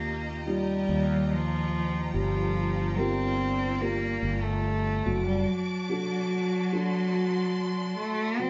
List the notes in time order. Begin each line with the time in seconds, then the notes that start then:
Already playing: D#2 D#3 A#3 D#4 F4 G4 D#5 G5 A#5
0.46 G3 D#4 F4 G4
0.89 D#2
1.32 F3
2.13 G1 F3 G3 F4 D5
2.97 C4 F4 G4 A#4
3.80 A#3 F4 G4 A#4
4.23 G1
4.44 A3
5.06 F#1 F#3 F#4 D5 A5 D6
5.27 G3
5.47 F#3
5.89 D4 F#4 A4
6.72 D4 F#4 A4 C6
7.98 A3
8.39 F#3 C4